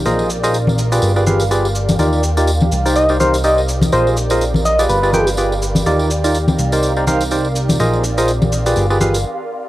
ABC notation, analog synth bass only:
X:1
M:4/4
L:1/8
Q:"Swing 16ths" 1/4=124
K:Bbmix
V:1 name="Analog synth bass" clef=bass
B,,,4 G,,,4 | E,,3 C,,4- C,, | B,,,4 G,,,4 | E,,3 C,,4- C,, |
B,,,4 G,,,2 z2 |]